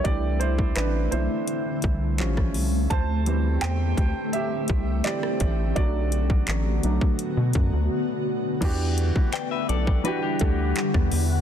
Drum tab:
CC |----------------|----------------|----------------|x---------------|
HH |x-x-x-x-x-x-x-o-|x-x-x-x-x-x-x-x-|x-x-x-x-x-x-----|x-x-x-x-x-x-x-o-|
CP |----x-------x---|----x-------x---|----x-----------|----x-------x---|
SD |-------------r--|-------------r--|----------------|-------------r--|
BD |o--o------o--o--|o-----o---o---o-|o--o---o--o-----|o--o---o--o--o--|